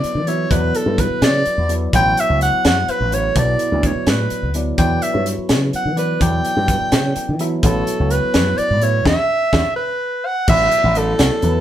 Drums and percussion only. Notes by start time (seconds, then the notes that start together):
0.04 closed hi-hat
0.27 closed hi-hat
0.51 kick, closed hi-hat
0.75 closed hi-hat
0.98 kick, closed hi-hat
1.22 snare, closed hi-hat
1.46 closed hi-hat
1.69 closed hi-hat
1.93 kick, closed hi-hat
2.17 closed hi-hat
2.41 closed hi-hat
2.65 snare, closed hi-hat
2.88 closed hi-hat
3.12 closed hi-hat
3.36 kick, closed hi-hat
3.59 closed hi-hat
3.83 kick, closed hi-hat
4.07 snare, closed hi-hat
4.30 closed hi-hat
4.54 closed hi-hat
4.78 kick, closed hi-hat
5.02 closed hi-hat
5.26 closed hi-hat
5.49 snare, closed hi-hat
5.73 closed hi-hat
5.97 closed hi-hat
6.21 kick, closed hi-hat
6.45 closed hi-hat
6.68 kick, closed hi-hat
6.92 snare, closed hi-hat
7.16 closed hi-hat
7.39 closed hi-hat
7.63 kick, closed hi-hat
7.87 closed hi-hat
8.11 closed hi-hat
8.34 snare, closed hi-hat
8.58 closed hi-hat
8.82 closed hi-hat
9.06 kick, snare
9.53 kick, snare
10.48 kick, crash
10.72 closed hi-hat
10.95 closed hi-hat
11.19 snare, closed hi-hat
11.42 closed hi-hat